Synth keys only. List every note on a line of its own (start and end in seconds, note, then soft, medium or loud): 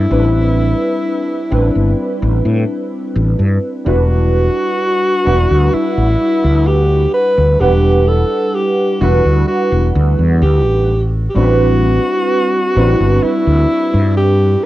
0.10 1.45 G3 medium
0.10 1.46 C4 medium
0.10 1.46 D4 medium
0.10 1.46 E4 medium
0.10 1.47 B4 medium
1.51 3.80 G3 medium
1.51 3.80 C4 medium
1.51 3.80 D4 medium
1.51 3.81 E4 medium
1.51 3.81 B4 medium
3.84 5.20 G3 medium
3.84 5.21 D4 medium
3.84 5.21 E4 medium
3.84 5.21 F#4 medium
3.84 5.22 B4 medium
5.24 7.54 G3 medium
5.24 7.54 D4 medium
5.24 7.55 E4 medium
5.24 7.56 B4 medium
5.24 7.55 F#5 medium
7.59 8.95 G3 medium
7.59 8.95 D4 medium
7.59 8.96 E4 medium
7.59 8.97 B4 medium
7.59 8.96 F#5 medium
9.00 10.86 G3 medium
9.00 10.86 D4 medium
9.00 10.86 E4 medium
9.00 10.87 B4 medium
9.00 10.87 F#5 medium
11.34 12.70 G3 medium
11.34 12.70 C4 medium
11.34 12.71 D4 medium
11.34 12.71 E4 medium
11.34 12.71 B4 medium
12.75 14.66 G3 medium
12.75 14.66 C4 medium
12.75 14.66 D4 medium
12.75 14.66 E4 medium
12.75 14.66 B4 medium